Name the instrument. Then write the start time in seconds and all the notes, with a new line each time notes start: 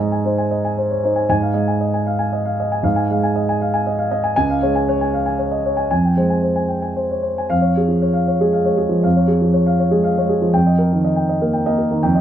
grand piano
Already playing: G#2 G#5
0.00 G#3 D#5
0.12 G#5
0.25 D#4 C5
0.38 G#5
0.51 D#5
0.65 G#5
0.78 C5
0.91 C#5
1.04 D#4 C5
1.16 G#5
1.29 G#2 G#5
1.42 F5
1.54 G#3 D#5
1.68 G#5
1.81 D#5
1.94 G#5
2.06 F5
2.19 G#5
2.33 D#5
2.45 F5
2.60 D#5
2.72 G#5
2.83 G#2 F5
2.96 G#5
3.11 G#3 F5
3.23 G#5
3.35 D#5
3.49 G#5
3.61 F5
3.74 G#5
3.87 D#5
3.98 F5
4.11 D#5
4.24 G#5
4.36 C#2 G#5
4.50 F5
4.63 G#3 C#5
4.75 G#5
4.89 C#5
5.01 G#5
5.14 F5
5.26 G#5
5.39 C#5
5.51 D#5
5.66 C#5
5.77 G#5
5.91 F2 G#5
6.05 G5
6.17 G#3 C5
6.30 G#5
6.42 C5
6.56 G#5
6.68 G5
6.82 G#5
6.96 C5
7.11 C#5
7.23 C5
7.38 G#5
7.50 F2 F5
7.62 C#5
7.77 G#4
7.88 F3
8.02 C#5
8.14 F5
8.27 C#5
8.40 G#3 G#4
8.53 F5
8.65 G#3 C#5
8.77 G#4
8.89 F3
9.03 F2 F5
9.16 C#5
9.28 G#4
9.41 F3
9.53 C#5
9.66 F5
9.79 C#5
9.91 G#3 G#4
10.04 F5
10.18 G#3 C#5
10.29 G#4
10.41 F3
10.53 F2 G5
10.67 D#5
10.79 A#4
10.93 D#3
11.04 D#5
11.16 G5
11.29 D#5
11.42 A#3 A#4
11.53 G5
11.66 A#3 D#5
11.78 A#4
11.91 D#3
12.03 F2 G5
12.15 D#5